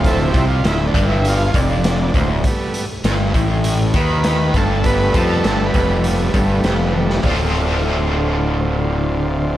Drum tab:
HH |x-x-x-x-x-x-x-x-|x-x-x-x-x-x-x-x-|x-x-x-x-x-x-x---|o---------------|
SD |----o-------o---|----o-------o-o-|----o-------o--o|----------------|
T1 |----------------|----------------|--------------o-|----------------|
FT |----------------|----------------|----------------|o---------------|
BD |o-o---o---o---o-|o-----o---o---o-|o-o---o---o-----|o---------------|